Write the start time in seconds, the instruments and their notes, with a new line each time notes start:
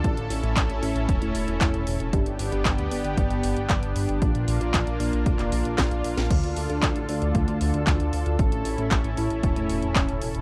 Already playing: analog synth pad A4
0.04 analog synth bass A1, analog polysynth A2 A3 C#4 E4 C#5, analog synth pad C#4 E4, kick, closed hi-hat
0.17 analog synth bass A1, closed hi-hat
0.30 analog synth bass A1, open hi-hat
0.43 analog synth bass A1, analog polysynth A2 A3 C#4 E4 C#5, closed hi-hat
0.56 analog synth bass A1, kick, clap, closed hi-hat
0.69 analog synth bass A1, closed hi-hat
0.82 analog synth bass A1, analog polysynth A2 A3 C#4 E4 C#5, open hi-hat
0.96 analog synth bass A1, closed hi-hat
1.09 analog synth bass E1, kick, closed hi-hat
1.22 analog synth bass E1, analog polysynth A2 A3 C#4 E4 C#5, closed hi-hat
1.35 analog synth bass E1, open hi-hat
1.48 analog synth bass E1, closed hi-hat
1.61 analog synth bass E1, analog polysynth A2 A3 C#4 E4 C#5, kick, clap, closed hi-hat
1.74 analog synth bass E1, closed hi-hat
1.87 analog synth bass E1, open hi-hat
2.00 analog synth bass E1, closed hi-hat
2.13 analog synth bass G1, analog polysynth G2 B3 D4 G4 D5, analog synth pad B3 D4 G4, kick, closed hi-hat
2.26 analog synth bass G1, closed hi-hat
2.39 analog synth bass G1, open hi-hat
2.52 analog synth bass G1, analog polysynth G2 B3 D4 G4 D5, closed hi-hat
2.65 analog synth bass G1, kick, clap, closed hi-hat
2.78 analog synth bass D2, closed hi-hat
2.91 analog synth bass G1, analog polysynth G2 B3 D4 G4 D5, open hi-hat
3.04 analog synth bass G1, closed hi-hat
3.17 analog synth bass G1, kick, closed hi-hat
3.30 analog synth bass G1, analog polysynth G2 B3 D4 G4 D5, closed hi-hat
3.43 analog synth bass G1, open hi-hat
3.57 analog synth bass G1, closed hi-hat
3.70 analog synth bass G1, analog polysynth G2 B3 D4 G4 D5, kick, clap, closed hi-hat
3.83 analog synth bass G1, closed hi-hat
3.96 analog synth bass G1, open hi-hat
4.09 analog synth bass G1, closed hi-hat
4.22 analog synth bass A#1, analog polysynth A#2 A#3 D4 F4 D5, analog synth pad A#3 F4, kick, closed hi-hat
4.35 analog synth bass A#1, closed hi-hat
4.48 analog synth bass A#1, open hi-hat
4.61 analog synth bass A#1, analog polysynth A#2 A#3 D4 F4 D5, closed hi-hat
4.74 analog synth bass A#1, kick, clap, closed hi-hat
4.87 analog synth bass A#1, closed hi-hat
5.00 analog synth bass A#1, analog polysynth A#2 A#3 D4 F4 D5, open hi-hat
5.13 analog synth bass A#1, closed hi-hat
5.26 analog synth bass F1, kick, closed hi-hat
5.39 analog synth bass F1, analog polysynth A#2 A#3 D4 F4 D5, clap, closed hi-hat
5.52 analog synth bass A#1, analog polysynth A#2 A#3 D4 F4 D5, open hi-hat
5.65 analog synth bass A#1, closed hi-hat
5.78 analog synth bass A#1, kick, snare, clap, closed hi-hat
5.91 analog synth bass A#1, analog polysynth A#2 A#3 D4 F4 D5, closed hi-hat
6.04 analog synth bass A#1, open hi-hat
6.17 analog synth bass A#1, snare, closed hi-hat
6.30 analog synth bass D2, analog polysynth D3 A3 D4 F4 D5, analog synth pad D3 A4, kick, closed hi-hat, crash
6.43 analog synth bass D2, closed hi-hat
6.56 analog synth bass D2, open hi-hat
6.70 analog synth bass D2, analog polysynth D3 A3 D4 F4 D5, closed hi-hat
6.83 analog synth bass D2, kick, clap, closed hi-hat
6.96 analog synth bass A1, closed hi-hat
7.09 analog synth bass D2, analog polysynth D3 A3 D4 F4 D5, open hi-hat
7.22 analog synth bass D2, closed hi-hat
7.35 analog synth bass D2, kick, closed hi-hat
7.48 analog synth bass D2, analog polysynth D3 A3 D4 F4 D5, closed hi-hat
7.61 analog synth bass D2, open hi-hat
7.74 analog synth bass D2, closed hi-hat
7.87 analog synth bass D2, analog polysynth D3 A3 D4 F4 D5, kick, clap, closed hi-hat
8.00 analog synth bass D2, closed hi-hat
8.13 analog synth bass D2, open hi-hat
8.26 analog synth bass D2, closed hi-hat
8.39 analog synth bass A1, analog polysynth A2 A3 C#4 E4 C#5, analog synth pad C#4 E4, kick, closed hi-hat
8.52 analog synth bass A1, closed hi-hat
8.65 analog synth bass A1, open hi-hat
8.78 analog synth bass A1, analog polysynth A2 A3 C#4 E4 C#5, closed hi-hat
8.91 analog synth bass A1, kick, clap, closed hi-hat
9.04 analog synth bass A1, closed hi-hat
9.17 analog synth bass A1, analog polysynth A2 A3 C#4 E4 C#5, open hi-hat
9.30 analog synth bass A1, closed hi-hat
9.43 analog synth bass E1, kick, closed hi-hat
9.56 analog synth bass E1, analog polysynth A2 A3 C#4 E4 C#5, closed hi-hat
9.69 analog synth bass E1, open hi-hat
9.82 analog synth bass E1, closed hi-hat
9.96 analog synth bass E1, analog polysynth A2 A3 C#4 E4 C#5, kick, clap, closed hi-hat
10.09 analog synth bass E1, closed hi-hat
10.22 analog synth bass E1, open hi-hat
10.35 analog synth bass E1, closed hi-hat